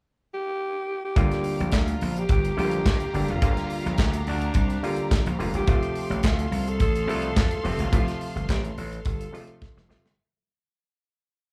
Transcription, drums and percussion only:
1.16 kick loud
1.16 closed hi-hat medium
1.31 snare soft
1.31 closed hi-hat soft
1.44 open hi-hat medium
1.60 closed hi-hat soft
1.72 kick medium
1.72 snare loud
1.72 clap medium
1.72 closed hi-hat medium
1.88 closed hi-hat medium
2.01 open hi-hat medium
2.17 closed hi-hat soft
2.29 kick loud
2.29 closed hi-hat medium
2.45 closed hi-hat medium
2.59 open hi-hat medium
2.71 closed hi-hat medium
2.86 kick loud
2.86 snare loud
2.86 clap medium
2.86 closed hi-hat medium
3.00 closed hi-hat soft
3.14 open hi-hat medium
3.28 closed hi-hat medium
3.42 kick loud
3.42 closed hi-hat medium
3.57 snare soft
3.57 closed hi-hat soft
3.70 open hi-hat medium
3.86 closed hi-hat soft
3.98 kick loud
3.98 snare loud
3.98 clap medium
3.98 closed hi-hat medium
4.13 closed hi-hat medium
4.27 open hi-hat medium
4.42 closed hi-hat soft
4.54 kick loud
4.54 closed hi-hat medium
4.70 closed hi-hat soft
4.84 open hi-hat medium
4.96 closed hi-hat soft
5.11 kick loud
5.11 snare medium
5.11 clap medium
5.11 closed hi-hat medium
5.26 closed hi-hat soft
5.40 open hi-hat medium
5.54 closed hi-hat medium
5.67 kick loud
5.67 closed hi-hat medium
5.83 closed hi-hat soft
5.95 open hi-hat medium
6.12 closed hi-hat soft
6.23 kick loud
6.23 snare loud
6.23 clap medium
6.23 closed hi-hat medium
6.39 closed hi-hat medium
6.52 open hi-hat medium
6.67 closed hi-hat soft
6.80 kick loud
6.80 closed hi-hat medium
6.95 closed hi-hat soft
7.09 open hi-hat medium
7.22 closed hi-hat soft
7.36 kick loud
7.36 snare loud
7.36 clap medium
7.36 closed hi-hat medium
7.51 closed hi-hat soft
7.65 open hi-hat medium
7.79 closed hi-hat medium
7.93 kick loud
7.93 closed hi-hat medium
8.08 snare soft
8.08 closed hi-hat soft
8.21 open hi-hat medium
8.37 closed hi-hat soft
8.49 kick loud
8.49 snare loud
8.49 clap medium
8.49 closed hi-hat medium
8.65 closed hi-hat medium
8.78 open hi-hat medium
8.93 closed hi-hat soft
9.05 kick loud
9.05 closed hi-hat medium
9.21 closed hi-hat medium
9.35 open hi-hat medium
9.47 closed hi-hat medium
9.62 kick loud
9.62 snare medium
9.77 snare medium
9.90 snare medium
10.06 snare loud

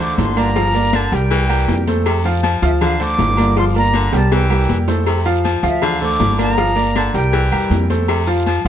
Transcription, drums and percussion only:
0.00 high conga soft
0.00 low conga medium
0.18 cowbell medium
0.18 high conga medium
0.18 low timbale medium
0.18 low agogo medium
0.18 short guiro medium
0.37 low agogo loud
0.37 short guiro medium
0.37 claves medium
0.56 cowbell loud
0.56 high conga soft
0.56 long guiro medium
0.74 high conga soft
0.74 low agogo medium
0.93 cowbell medium
0.93 high conga loud
0.93 low timbale medium
0.93 low agogo loud
0.93 short guiro medium
0.93 claves medium
1.12 cowbell medium
1.12 short guiro medium
1.31 cowbell loud
1.31 high conga soft
1.31 low agogo medium
1.31 long guiro medium
1.50 high conga soft
1.50 low agogo loud
1.50 claves medium
1.69 cowbell medium
1.69 high conga medium
1.69 low timbale medium
1.69 short guiro medium
1.87 cowbell medium
1.87 high conga medium
1.87 low agogo medium
1.87 short guiro medium
2.06 cowbell loud
2.06 high conga soft
2.06 low agogo loud
2.06 long guiro medium
2.06 claves medium
2.25 high conga soft
2.25 low agogo medium
2.43 cowbell medium
2.43 high conga medium
2.43 low timbale medium
2.43 low agogo medium
2.43 short guiro medium
2.63 cowbell medium
2.63 short guiro medium
2.81 cowbell loud
2.81 high conga soft
2.81 low conga medium
2.81 low agogo loud
2.81 long guiro medium
2.81 claves medium
3.00 high conga soft
3.00 low conga medium
3.19 cowbell medium
3.19 high conga medium
3.19 low timbale medium
3.19 low agogo medium
3.19 short guiro medium
3.37 high conga medium
3.37 low agogo loud
3.37 short guiro medium
3.37 claves medium
3.57 cowbell loud
3.57 long guiro medium
3.75 high conga soft
3.75 low agogo medium
3.94 cowbell medium
3.94 high conga loud
3.94 low timbale medium
3.94 low agogo loud
3.94 short guiro medium
3.94 claves medium
4.13 cowbell medium
4.13 high timbale medium
4.13 short guiro medium
4.31 cowbell loud
4.31 high conga soft
4.31 high timbale medium
4.31 low agogo medium
4.31 long guiro medium
4.50 high conga soft
4.50 low timbale medium
4.50 low agogo loud
4.50 claves medium
4.69 cowbell medium
4.69 high conga medium
4.69 short guiro medium
4.88 cowbell medium
4.88 high conga medium
4.88 low timbale medium
4.88 low agogo medium
4.88 short guiro medium
5.06 cowbell loud
5.06 high conga soft
5.06 low agogo loud
5.06 long guiro medium
5.06 claves medium
5.25 high conga soft
5.25 low agogo medium
5.44 cowbell medium
5.44 high conga medium
5.44 low timbale medium
5.44 low agogo medium
5.44 short guiro medium
5.63 cowbell medium
5.63 short guiro medium
5.82 cowbell loud
5.82 high conga soft
5.82 low conga medium
5.82 low agogo loud
5.82 long guiro medium
5.82 claves medium
6.02 high conga soft
6.02 low conga medium
6.20 cowbell medium
6.20 high conga medium
6.20 low timbale medium
6.20 low agogo medium
6.20 short guiro medium
6.39 high conga medium
6.39 low agogo loud
6.39 short guiro medium
6.39 claves medium
6.58 cowbell loud
6.58 high conga soft
6.58 long guiro medium
6.77 high conga soft
6.77 low agogo medium
6.95 cowbell medium
6.95 high conga loud
6.95 low timbale medium
6.95 low agogo loud
6.95 short guiro medium
6.95 claves medium
7.15 cowbell medium
7.15 short guiro medium
7.33 cowbell loud
7.33 high conga soft
7.33 low agogo medium
7.33 long guiro medium
7.52 high conga soft
7.52 low agogo loud
7.52 claves medium
7.71 cowbell medium
7.71 high conga medium
7.71 low timbale medium
7.71 short guiro medium
7.90 cowbell medium
7.90 high conga medium
7.90 low agogo medium
7.90 short guiro medium
8.08 cowbell loud
8.08 high conga soft
8.08 low agogo loud
8.08 long guiro medium
8.08 claves medium
8.27 high conga soft
8.27 low agogo medium
8.46 cowbell medium
8.46 high conga medium
8.46 low timbale medium
8.46 low agogo medium
8.46 short guiro medium

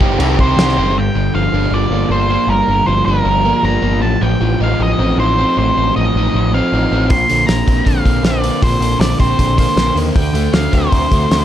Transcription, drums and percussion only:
0.01 kick medium
0.20 crash medium
0.39 kick loud
0.59 snare loud
0.59 crash medium
0.69 snare soft
7.10 kick loud
7.10 open hi-hat medium
7.30 open hi-hat medium
7.49 snare loud
7.49 open hi-hat medium
7.68 kick medium
7.68 open hi-hat soft
7.86 kick medium
7.86 open hi-hat medium
8.06 kick medium
8.06 open hi-hat medium
8.24 snare loud
8.24 open hi-hat medium
8.44 open hi-hat medium
8.63 kick loud
8.63 open hi-hat medium
8.82 open hi-hat medium
9.01 snare loud
9.01 open hi-hat medium
9.20 kick medium
9.20 open hi-hat medium
9.39 kick medium
9.39 open hi-hat medium
9.58 kick medium
9.58 open hi-hat medium
9.77 snare loud
9.77 open hi-hat medium
9.97 open hi-hat medium
10.16 kick loud
10.16 open hi-hat medium
10.35 open hi-hat medium
10.54 snare loud
10.54 open hi-hat medium
10.73 kick medium
10.73 open hi-hat soft
10.92 kick medium
10.92 open hi-hat medium
11.12 kick medium
11.12 open hi-hat medium
11.31 snare medium
11.31 open hi-hat medium

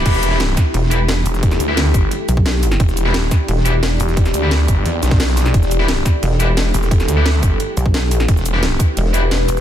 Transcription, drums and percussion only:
0.06 kick loud
0.06 closed hi-hat medium
0.06 crash medium
0.14 snare soft
0.14 shaker soft
0.23 closed hi-hat loud
0.23 closed hi-hat medium
0.23 shaker medium
0.32 snare medium
0.40 snare loud
0.40 closed hi-hat medium
0.57 kick loud
0.57 snare soft
0.57 closed hi-hat medium
0.57 closed hi-hat loud
0.57 shaker medium
0.74 closed hi-hat medium
0.74 open hi-hat medium
0.83 snare soft
0.91 closed hi-hat loud
0.91 closed hi-hat medium
0.91 shaker medium
1.09 snare loud
1.09 closed hi-hat medium
1.26 closed hi-hat medium
1.26 open hi-hat medium
1.26 shaker medium
1.34 snare medium
1.34 shaker soft
1.43 kick loud
1.43 closed hi-hat medium
1.51 snare medium
1.51 snare soft
1.51 shaker soft
1.60 closed hi-hat medium
1.60 closed hi-hat loud
1.60 shaker medium
1.77 snare loud
1.77 closed hi-hat medium
1.94 kick loud
1.94 closed hi-hat medium
1.94 shaker medium
2.11 closed hi-hat medium
2.29 closed hi-hat medium
2.29 closed hi-hat loud
2.29 shaker medium
2.37 kick loud
2.46 snare loud
2.46 closed hi-hat medium
2.54 snare soft
2.63 closed hi-hat medium
2.63 open hi-hat medium
2.63 shaker medium
2.71 snare medium
2.71 shaker soft
2.80 kick loud
2.80 closed hi-hat medium
2.89 snare soft
2.89 shaker soft
2.97 closed hi-hat medium
2.97 shaker medium
3.06 snare medium
3.14 snare loud
3.14 closed hi-hat medium
3.31 kick loud
3.31 snare soft
3.31 closed hi-hat medium
3.31 shaker medium
3.48 closed hi-hat medium
3.48 open hi-hat medium
3.57 snare soft
3.66 closed hi-hat medium
3.66 shaker medium
3.83 snare loud
3.83 closed hi-hat medium
4.00 closed hi-hat medium
4.00 open hi-hat medium
4.00 shaker medium
4.08 snare medium
4.08 shaker soft
4.17 kick loud
4.17 closed hi-hat medium
4.26 snare medium
4.26 snare soft
4.26 shaker soft
4.34 closed hi-hat medium
4.34 shaker medium
4.51 snare loud
4.51 closed hi-hat medium
4.68 kick loud
4.68 closed hi-hat medium
4.68 shaker medium
4.86 closed hi-hat medium
5.03 snare loud
5.03 closed hi-hat medium
5.03 shaker medium
5.11 kick loud
5.11 snare loud
5.11 closed hi-hat medium
5.20 snare loud
5.20 closed hi-hat medium
5.29 snare loud
5.29 closed hi-hat medium
5.37 snare loud
5.37 closed hi-hat medium
5.37 open hi-hat medium
5.37 shaker medium
5.46 snare medium
5.46 shaker soft
5.54 kick loud
5.54 closed hi-hat medium
5.63 snare soft
5.63 shaker soft
5.71 closed hi-hat medium
5.71 shaker medium
5.80 snare medium
5.88 snare loud
5.88 closed hi-hat medium
6.06 kick loud
6.06 snare soft
6.06 closed hi-hat medium
6.06 shaker medium
6.23 closed hi-hat medium
6.23 open hi-hat medium
6.31 snare soft
6.40 closed hi-hat medium
6.40 shaker medium
6.57 snare loud
6.57 closed hi-hat loud
6.57 closed hi-hat medium
6.74 closed hi-hat medium
6.74 open hi-hat medium
6.74 shaker medium
6.83 snare medium
6.83 shaker soft
6.91 kick loud
6.91 closed hi-hat medium
7.00 snare medium
7.00 snare soft
7.00 shaker soft
7.08 closed hi-hat medium
7.08 shaker medium
7.26 snare loud
7.26 closed hi-hat medium
7.43 kick loud
7.43 closed hi-hat medium
7.43 shaker medium
7.60 closed hi-hat medium
7.77 closed hi-hat medium
7.77 shaker medium
7.86 kick loud
7.94 snare loud
7.94 closed hi-hat medium
8.03 snare soft
8.11 closed hi-hat medium
8.11 open hi-hat medium
8.11 shaker medium
8.20 snare medium
8.20 shaker soft
8.28 kick loud
8.28 closed hi-hat medium
8.37 snare soft
8.37 shaker soft
8.46 closed hi-hat medium
8.46 closed hi-hat loud
8.46 shaker medium
8.54 snare medium
8.63 snare loud
8.63 closed hi-hat medium
8.80 kick loud
8.80 closed hi-hat loud
8.80 closed hi-hat medium
8.80 shaker medium
8.97 closed hi-hat medium
8.97 open hi-hat medium
9.06 snare soft
9.14 closed hi-hat medium
9.14 closed hi-hat loud
9.14 shaker medium
9.31 snare loud
9.31 closed hi-hat loud
9.31 closed hi-hat medium
9.48 closed hi-hat medium
9.48 open hi-hat medium
9.48 shaker medium
9.57 snare medium
9.57 shaker soft

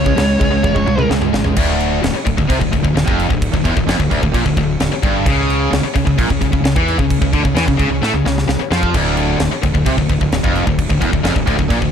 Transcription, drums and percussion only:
0.06 kick medium
0.17 snare loud
0.17 crash medium
0.41 kick medium
0.41 crash medium
0.64 kick loud
0.64 high tom medium
0.76 kick medium
0.88 mid tom medium
0.99 mid tom medium
1.11 snare medium
1.22 mid tom medium
1.34 snare loud
1.44 floor tom medium
1.56 kick loud
1.56 crash loud
1.56 crash medium
1.80 crash medium
2.04 snare loud
2.04 crash medium
2.27 kick medium
2.27 crash medium
2.38 kick medium
2.50 kick loud
2.50 crash medium
2.61 kick medium
2.73 kick medium
2.73 crash medium
2.85 kick medium
2.97 snare loud
2.97 crash medium
3.08 kick loud
3.19 crash medium
3.30 kick medium
3.42 kick loud
3.42 crash medium
3.54 kick medium
3.65 kick medium
3.65 crash medium
3.77 kick medium
3.88 snare loud
3.88 crash medium
4.00 kick medium
4.11 kick medium
4.11 crash medium
4.23 kick medium
4.34 kick loud
4.34 crash medium
4.46 kick medium
4.57 kick medium
4.57 crash medium
4.80 snare loud
4.80 crash medium
5.03 kick loud
5.03 crash medium
5.26 kick loud
5.26 crash medium
5.50 crash medium
5.73 snare loud
5.73 crash medium
5.96 kick medium
5.96 crash medium
6.07 kick medium
6.19 kick medium
6.19 crash medium
6.30 kick medium
6.42 kick medium
6.42 crash medium
6.53 kick medium
6.65 snare loud
6.65 crash medium
6.76 kick loud
6.88 crash medium
6.99 kick medium
7.10 kick loud
7.10 crash medium
7.22 kick medium
7.33 kick medium
7.33 crash medium
7.45 kick medium
7.56 snare loud
7.56 crash medium
7.68 kick medium
7.79 kick medium
7.79 crash medium
8.03 snare medium
8.26 snare medium
8.38 snare medium
8.49 snare medium
8.72 snare loud
8.83 kick medium
8.94 kick medium
8.94 crash loud
8.94 crash medium
9.17 crash medium
9.40 snare loud
9.40 crash medium
9.63 kick medium
9.63 crash medium
9.75 kick medium
9.86 kick loud
9.86 crash medium
9.98 kick medium
10.09 kick medium
10.09 crash medium
10.21 kick medium
10.32 snare loud
10.32 crash medium
10.44 kick loud
10.55 crash medium
10.67 kick medium
10.79 kick loud
10.79 crash medium
10.90 kick medium
11.02 kick medium
11.02 crash medium
11.13 kick medium
11.25 snare loud
11.25 crash medium
11.36 kick medium
11.47 kick medium
11.47 crash medium
11.59 kick medium
11.70 kick loud
11.70 crash medium
11.82 kick medium

